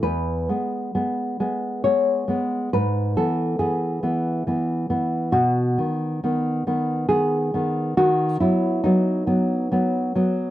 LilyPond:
\new Staff \with { instrumentName = "Nylon-string guitar" } { \time 3/4 \key e \major \tempo 4 = 68 << { b'2 cis''4 | b'8 a'8 gis'4. r8 | fis'2 gis'4 | fis'8 e'8 dis'4. r8 | } \\ { e,8 <gis b>8 <gis b>8 <gis b>8 <gis b>8 <gis b>8 | gis,8 <e b>8 <e b>8 <e b>8 <e b>8 <e b>8 | b,8 <dis b>8 <dis b>8 <dis b>8 <dis b>8 <dis b>8 | dis8 <fis b>8 <fis b>8 <fis b>8 <fis b>8 <fis b>8 | } >> }